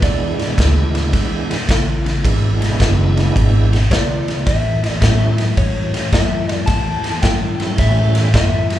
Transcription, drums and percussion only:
0.02 kick medium
0.02 snare soft
0.02 ride medium
0.39 snare soft
0.39 ride medium
0.58 kick medium
0.58 snare loud
0.58 ride medium
0.95 snare soft
0.95 ride medium
1.13 kick medium
1.13 snare soft
1.13 ride medium
1.51 snare soft
1.51 ride medium
1.69 kick medium
1.69 snare loud
1.69 ride medium
2.06 snare soft
2.06 ride medium
2.25 kick medium
2.25 ride medium
2.62 snare soft
2.62 ride medium
2.80 kick medium
2.80 snare loud
2.80 ride medium
3.17 snare soft
3.17 ride medium
3.36 kick medium
3.36 ride medium
3.73 snare soft
3.73 ride medium
3.91 kick medium
3.91 snare loud
3.91 ride medium
4.28 snare soft
4.28 ride medium
4.46 kick medium
4.46 snare soft
4.46 ride medium
4.84 snare soft
4.84 ride medium
5.02 kick medium
5.02 snare loud
5.02 ride medium
5.38 snare soft
5.38 ride medium
5.57 kick medium
5.57 ride medium
5.94 snare soft
5.94 ride medium
6.12 kick medium
6.12 snare loud
6.12 ride medium
6.49 snare soft
6.49 ride medium
6.67 kick medium
6.67 snare soft
6.67 ride medium
7.04 snare soft
7.04 ride medium
7.22 kick medium
7.22 snare loud
7.22 ride medium
7.60 snare soft
7.60 ride medium
7.78 kick medium
7.78 snare soft
7.78 ride medium
8.15 snare soft
8.15 ride medium
8.34 kick medium
8.34 snare loud
8.34 ride medium
8.70 snare soft
8.70 ride medium

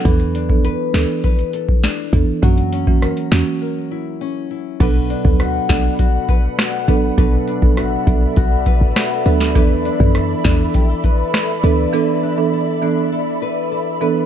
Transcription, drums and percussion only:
0.05 kick loud
0.05 closed hi-hat medium
0.20 closed hi-hat medium
0.35 closed hi-hat medium
0.50 kick medium
0.65 closed hi-hat medium
0.94 snare loud
0.94 closed hi-hat medium
1.24 kick medium
1.24 closed hi-hat medium
1.39 closed hi-hat medium
1.53 closed hi-hat medium
1.69 kick medium
1.84 snare loud
1.84 closed hi-hat medium
2.13 kick medium
2.13 closed hi-hat medium
2.43 kick loud
2.43 closed hi-hat medium
2.58 closed hi-hat medium
2.73 closed hi-hat medium
2.87 kick medium
3.02 cross-stick medium
3.02 closed hi-hat medium
3.17 closed hi-hat medium
3.32 snare loud
3.32 closed hi-hat medium
4.80 kick loud
4.80 closed hi-hat medium
4.80 crash medium
5.10 closed hi-hat medium
5.25 kick medium
5.40 cross-stick medium
5.40 closed hi-hat medium
5.69 kick medium
5.69 snare loud
5.69 closed hi-hat medium
5.99 kick medium
5.99 closed hi-hat medium
6.29 kick medium
6.29 closed hi-hat medium
6.59 cross-stick medium
6.59 snare loud
6.59 closed hi-hat medium
6.88 closed hi-hat soft
7.18 kick loud
7.18 closed hi-hat medium
7.48 closed hi-hat medium
7.62 kick medium
7.77 cross-stick medium
7.77 closed hi-hat medium
8.07 kick loud
8.07 closed hi-hat medium
8.36 kick loud
8.36 closed hi-hat medium
8.66 kick medium
8.66 closed hi-hat medium
8.96 cross-stick medium
8.96 snare loud
8.96 closed hi-hat medium
9.26 closed hi-hat medium
9.40 snare medium
9.55 kick loud
9.55 closed hi-hat medium
9.85 closed hi-hat medium
10.00 kick medium
10.15 cross-stick medium
10.15 closed hi-hat medium
10.45 kick loud
10.45 snare loud
10.45 closed hi-hat medium
10.74 kick medium
10.74 closed hi-hat medium
11.04 kick medium
11.04 closed hi-hat medium
11.34 cross-stick medium
11.34 snare loud
11.34 closed hi-hat medium
11.64 closed hi-hat medium

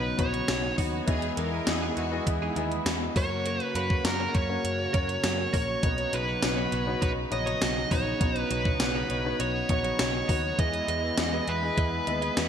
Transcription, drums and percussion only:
0.19 kick medium
0.19 closed hi-hat medium
0.34 closed hi-hat medium
0.48 snare loud
0.48 closed hi-hat medium
0.48 tambourine medium
0.78 kick medium
0.78 open hi-hat medium
1.08 kick loud
1.08 closed hi-hat medium
1.22 closed hi-hat soft
1.37 closed hi-hat medium
1.67 snare loud
1.67 closed hi-hat medium
1.67 tambourine medium
1.97 closed hi-hat medium
2.27 kick loud
2.27 closed hi-hat medium
2.56 closed hi-hat medium
2.72 closed hi-hat soft
2.86 snare loud
2.86 closed hi-hat loud
2.86 tambourine medium
3.16 kick loud
3.16 open hi-hat medium
3.46 closed hi-hat medium
3.60 closed hi-hat soft
3.75 closed hi-hat medium
3.90 kick medium
4.05 snare loud
4.05 closed hi-hat loud
4.05 tambourine medium
4.35 kick medium
4.35 closed hi-hat medium
4.65 closed hi-hat medium
4.94 kick medium
4.94 closed hi-hat medium
5.09 closed hi-hat medium
5.23 snare loud
5.23 closed hi-hat loud
5.23 tambourine medium
5.54 kick medium
5.54 open hi-hat medium
5.83 kick loud
5.83 closed hi-hat medium
5.98 closed hi-hat soft
6.13 closed hi-hat medium
6.43 snare loud
6.43 closed hi-hat loud
6.43 tambourine medium
6.72 closed hi-hat medium
7.02 kick medium
7.02 closed hi-hat medium
7.32 closed hi-hat medium
7.47 closed hi-hat medium
7.61 snare loud
7.61 closed hi-hat medium
7.61 tambourine medium
7.91 kick medium
7.91 open hi-hat medium
8.21 kick loud
8.21 closed hi-hat medium
8.36 closed hi-hat soft
8.51 closed hi-hat medium
8.65 kick loud
8.80 snare loud
8.80 closed hi-hat medium
8.80 tambourine medium
9.10 closed hi-hat medium
9.40 closed hi-hat medium
9.69 kick medium
9.69 closed hi-hat medium
9.84 closed hi-hat medium
9.99 snare loud
9.99 closed hi-hat medium
9.99 tambourine medium
10.29 kick medium
10.29 open hi-hat medium
10.59 kick loud
10.59 closed hi-hat medium
10.74 closed hi-hat soft
10.88 closed hi-hat medium
11.18 snare loud
11.18 closed hi-hat medium
11.18 tambourine medium
11.48 closed hi-hat medium
11.78 kick loud
11.78 closed hi-hat medium
12.07 closed hi-hat medium
12.22 closed hi-hat medium
12.37 snare loud
12.37 closed hi-hat medium
12.37 tambourine medium

